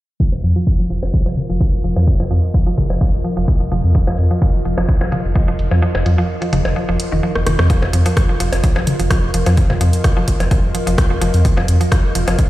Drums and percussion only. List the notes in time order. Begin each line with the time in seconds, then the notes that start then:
0.20 kick
0.32 percussion blips
0.43 closed hi-hat
0.67 kick
0.90 closed hi-hat
1.03 percussion blips
1.14 kick
1.26 percussion blips
1.37 closed hi-hat, mid tom
1.60 kick
1.84 closed hi-hat
1.96 percussion blips
2.07 kick
2.20 percussion blips
2.31 closed hi-hat
2.54 kick
2.67 closed hi-hat
2.78 kick, closed hi-hat, mid tom
2.90 percussion blips
3.01 kick
3.25 closed hi-hat
3.48 kick
3.72 closed hi-hat, mid tom
3.95 kick
4.07 percussion blips
4.18 closed hi-hat
4.42 kick
4.54 closed hi-hat
4.65 closed hi-hat
4.78 percussion blips
4.89 kick
5.01 percussion blips
5.12 closed hi-hat, mid tom
5.36 kick
5.59 closed hi-hat
5.71 percussion blips
5.95 percussion blips
6.06 closed hi-hat
6.42 closed hi-hat
6.53 closed hi-hat, mid tom
6.65 percussion blips
7.00 closed hi-hat
7.36 cross-stick
7.47 cross-stick, closed hi-hat, mid tom
7.59 cross-stick
7.70 kick, closed hi-hat
7.82 percussion blips
7.93 closed hi-hat
8.06 closed hi-hat
8.17 kick, cross-stick, closed hi-hat
8.40 closed hi-hat
8.53 closed hi-hat, percussion blips
8.64 kick, closed hi-hat
8.76 percussion blips
8.87 closed hi-hat, mid tom
9.00 closed hi-hat
9.11 kick, cross-stick, closed hi-hat
9.34 closed hi-hat
9.46 closed hi-hat, percussion blips
9.57 kick, closed hi-hat
9.70 mid tom, percussion blips
9.81 closed hi-hat
9.93 closed hi-hat
10.04 kick, cross-stick, closed hi-hat
10.28 kick, closed hi-hat
10.40 closed hi-hat, percussion blips
10.51 kick, closed hi-hat
10.75 closed hi-hat
10.87 closed hi-hat
10.98 kick, cross-stick, closed hi-hat
11.22 closed hi-hat
11.34 closed hi-hat
11.45 kick, closed hi-hat
11.57 percussion blips
11.68 closed hi-hat
11.81 closed hi-hat
11.92 kick, cross-stick, closed hi-hat
12.15 closed hi-hat
12.28 closed hi-hat, percussion blips
12.39 kick, closed hi-hat